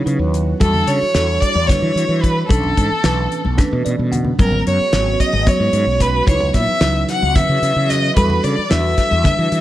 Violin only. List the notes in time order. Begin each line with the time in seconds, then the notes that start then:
0.61 A4
0.87 C#5
1.40 D5
1.67 C#5
2.21 B4
2.47 A4
4.40 A#4
4.67 C#5
5.20 D#5
5.48 C#5
6.01 B4
6.28 C#5
6.55 E5
7.10 F#5
7.36 E5
7.89 D#5
8.16 B4
8.44 D5
8.71 E5